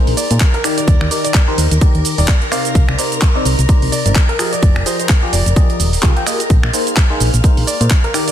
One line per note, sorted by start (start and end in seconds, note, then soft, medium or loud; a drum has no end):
0.00 0.27 A#3 medium
0.00 0.27 D#4 medium
0.00 0.27 G#4 medium
0.00 0.27 A#4 medium
0.00 6.51 A#4 medium
0.00 0.27 C5 loud
0.00 6.51 A#5 medium
0.07 0.14 A#1 medium
0.07 open hi-hat medium
0.17 0.33 D5 medium
0.17 open hi-hat loud
0.17 shaker medium
0.31 0.38 A#2 loud
0.31 0.42 A#3 medium
0.31 0.42 D#4 medium
0.31 0.42 G#4 medium
0.31 0.42 A#4 medium
0.31 0.42 C5 medium
0.31 closed hi-hat medium
0.31 shaker soft
0.40 kick loud
0.40 clap loud
0.40 closed hi-hat medium
0.40 shaker soft
0.54 0.61 A#4 medium
0.54 closed hi-hat soft
0.64 1.09 D#3 medium
0.64 1.09 D#4 medium
0.64 1.09 G4 medium
0.64 0.73 A#4 medium
0.64 1.09 A#4 medium
0.64 1.09 D5 loud
0.64 finger snap medium
0.64 open hi-hat loud
0.64 shaker medium
0.78 1.22 D5 medium
0.78 closed hi-hat medium
0.78 shaker soft
0.88 0.97 D#2 loud
0.88 kick loud
0.88 closed hi-hat medium
0.88 shaker soft
1.01 1.08 D#2 medium
1.01 finger snap medium
1.11 1.32 D#3 medium
1.11 1.32 D#4 medium
1.11 1.32 G4 medium
1.11 1.32 A#4 medium
1.11 1.32 D5 medium
1.11 open hi-hat loud
1.11 shaker medium
1.24 1.38 D5 medium
1.24 closed hi-hat medium
1.24 shaker soft
1.34 kick loud
1.34 clap loud
1.34 closed hi-hat medium
1.34 shaker soft
1.48 1.68 D#3 medium
1.48 1.68 D#4 medium
1.48 1.68 G4 medium
1.48 1.68 A#4 medium
1.48 1.68 C5 loud
1.58 1.67 D#2 medium
1.58 open hi-hat loud
1.58 shaker medium
1.71 1.78 D#2 medium
1.71 closed hi-hat medium
1.71 shaker soft
1.81 2.15 D#3 medium
1.81 2.15 D#4 medium
1.81 2.15 G4 medium
1.81 2.15 A#4 medium
1.81 2.15 D5 loud
1.81 kick loud
1.81 closed hi-hat medium
1.81 shaker soft
1.95 2.02 D#2 medium
1.95 closed hi-hat soft
2.05 open hi-hat loud
2.05 shaker medium
2.18 2.25 D#1 loud
2.18 2.29 D#3 medium
2.18 2.29 D#4 medium
2.18 2.29 G4 medium
2.18 2.29 A#4 medium
2.18 2.31 D5 medium
2.18 2.29 D5 medium
2.18 open hi-hat medium
2.18 shaker soft
2.28 kick loud
2.28 clap loud
2.28 closed hi-hat medium
2.28 shaker soft
2.42 closed hi-hat soft
2.52 2.96 C3 medium
2.52 2.96 D#4 medium
2.52 2.96 A#4 medium
2.52 2.96 C5 medium
2.52 2.96 D5 loud
2.52 2.80 F5 loud
2.52 finger snap medium
2.52 open hi-hat loud
2.52 shaker medium
2.65 closed hi-hat medium
2.65 shaker soft
2.75 2.84 C2 loud
2.75 kick loud
2.75 closed hi-hat medium
2.75 shaker soft
2.88 2.95 C2 medium
2.88 finger snap medium
2.98 3.19 C3 medium
2.98 3.19 D#4 medium
2.98 3.19 A#4 medium
2.98 3.19 C5 medium
2.98 3.19 D5 medium
2.98 open hi-hat loud
2.98 shaker medium
3.12 closed hi-hat medium
3.12 shaker soft
3.22 kick loud
3.22 clap loud
3.22 closed hi-hat medium
3.22 shaker soft
3.35 3.55 C3 loud
3.35 3.55 D#4 medium
3.35 3.55 A#4 medium
3.35 3.55 C5 medium
3.35 3.55 D5 loud
3.45 3.55 C2 medium
3.45 open hi-hat loud
3.45 shaker medium
3.59 3.66 C2 medium
3.59 closed hi-hat soft
3.59 shaker soft
3.69 4.02 C3 medium
3.69 4.02 D#4 medium
3.69 4.02 A#4 medium
3.69 4.02 C5 medium
3.69 4.02 D5 loud
3.69 kick loud
3.69 closed hi-hat medium
3.69 shaker soft
3.82 3.89 C2 medium
3.82 open hi-hat medium
3.92 4.08 D5 medium
3.92 open hi-hat loud
3.92 shaker medium
4.06 4.13 G1 loud
4.06 4.17 C3 medium
4.06 4.17 D#4 medium
4.06 4.17 A#4 medium
4.06 4.17 C5 medium
4.06 4.17 D5 medium
4.06 closed hi-hat medium
4.06 shaker soft
4.15 kick loud
4.15 clap loud
4.15 closed hi-hat medium
4.15 shaker soft
4.29 4.35 A#4 medium
4.29 closed hi-hat soft
4.39 4.84 F3 medium
4.39 4.84 F4 medium
4.39 4.84 G4 medium
4.39 4.84 G#4 medium
4.39 4.48 A#4 medium
4.39 4.84 D#5 medium
4.39 finger snap medium
4.39 open hi-hat loud
4.39 shaker medium
4.53 4.97 D5 medium
4.53 closed hi-hat medium
4.53 shaker soft
4.63 4.72 F1 loud
4.63 kick loud
4.63 closed hi-hat medium
4.63 shaker soft
4.76 4.83 F1 medium
4.76 finger snap medium
4.86 5.07 F3 medium
4.86 5.07 F4 medium
4.86 5.07 G4 medium
4.86 5.07 G#4 medium
4.86 4.95 C5 medium
4.86 5.07 D#5 medium
4.86 open hi-hat loud
4.86 shaker medium
5.00 5.06 C5 medium
5.00 closed hi-hat soft
5.00 shaker soft
5.09 kick loud
5.09 clap loud
5.09 closed hi-hat medium
5.09 shaker soft
5.23 5.43 F3 loud
5.23 5.43 F4 medium
5.23 5.43 G4 medium
5.23 5.43 G#4 medium
5.23 5.43 D5 loud
5.33 5.42 F1 medium
5.33 5.99 D5 medium
5.33 open hi-hat loud
5.33 shaker medium
5.46 5.53 F1 medium
5.46 closed hi-hat soft
5.46 shaker soft
5.56 5.90 F3 medium
5.56 5.90 F4 medium
5.56 5.90 G4 medium
5.56 5.90 G#4 medium
5.56 5.90 D#5 loud
5.56 kick loud
5.56 closed hi-hat medium
5.56 shaker soft
5.70 closed hi-hat soft
5.80 5.97 D#1 medium
5.80 open hi-hat loud
5.80 shaker medium
5.93 open hi-hat medium
5.93 shaker soft
6.03 6.13 C2 medium
6.03 6.13 F3 medium
6.03 6.13 F4 medium
6.03 6.13 G4 medium
6.03 6.13 G#4 medium
6.03 6.13 F5 loud
6.03 kick loud
6.03 clap loud
6.03 closed hi-hat medium
6.03 shaker soft
6.17 6.24 F3 medium
6.17 6.24 F4 medium
6.17 6.24 G4 medium
6.17 6.24 G#4 medium
6.17 6.24 G5 medium
6.17 closed hi-hat soft
6.27 6.41 A#3 medium
6.27 6.41 F4 medium
6.27 6.41 G4 medium
6.27 6.41 G#4 medium
6.27 6.41 D#5 medium
6.27 finger snap medium
6.27 open hi-hat loud
6.27 shaker medium
6.40 closed hi-hat soft
6.40 shaker soft
6.50 6.59 A#1 loud
6.50 8.32 F5 medium
6.50 8.32 F6 medium
6.50 kick loud
6.50 closed hi-hat medium
6.50 shaker soft
6.63 6.71 A#1 medium
6.63 finger snap medium
6.74 6.94 A#3 medium
6.74 6.94 D#4 medium
6.74 6.94 G#4 medium
6.74 6.94 A#4 medium
6.74 6.94 C5 medium
6.74 open hi-hat loud
6.74 shaker medium
6.87 closed hi-hat medium
6.87 shaker soft
6.97 kick loud
6.97 clap loud
6.97 closed hi-hat medium
6.97 shaker soft
7.10 7.30 A#3 loud
7.10 7.30 D#4 medium
7.10 7.30 G#4 medium
7.10 7.30 A#4 medium
7.10 7.30 C5 loud
7.20 7.30 A#1 medium
7.20 open hi-hat loud
7.20 shaker medium
7.34 7.41 A#1 medium
7.34 closed hi-hat medium
7.34 shaker soft
7.44 7.77 A#3 medium
7.44 7.77 D#4 medium
7.44 7.77 G#4 medium
7.44 7.77 A#4 medium
7.44 7.77 C5 loud
7.44 kick loud
7.44 closed hi-hat medium
7.44 shaker soft
7.57 7.64 A#1 medium
7.57 open hi-hat medium
7.67 7.83 D5 medium
7.67 open hi-hat loud
7.67 shaker medium
7.81 7.88 A#2 loud
7.81 7.92 A#3 medium
7.81 7.92 D#4 medium
7.81 7.92 G#4 medium
7.81 7.92 A#4 medium
7.81 7.92 C5 medium
7.81 closed hi-hat medium
7.81 shaker soft
7.90 kick loud
7.90 clap loud
7.90 closed hi-hat medium
7.90 shaker soft
8.04 8.11 A#4 medium
8.04 closed hi-hat soft
8.14 8.32 D#3 medium
8.14 8.32 D#4 medium
8.14 8.32 G4 medium
8.14 8.32 A#4 medium
8.14 8.23 A#4 medium
8.14 8.32 D5 loud
8.14 finger snap medium
8.14 open hi-hat loud
8.14 shaker medium
8.28 8.32 D5 medium
8.28 closed hi-hat medium
8.28 shaker soft